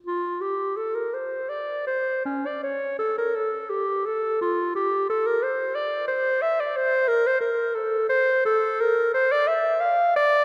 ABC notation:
X:1
M:3/4
L:1/16
Q:1/4=87
K:Cmix
V:1 name="Clarinet"
F2 G2 A B c2 d2 c2 | _D =d _d2 A B A2 G2 A2 | F2 G2 A B c2 d2 c2 | e d c2 B c B2 A2 c2 |
A2 B2 c d e2 f2 d2 |]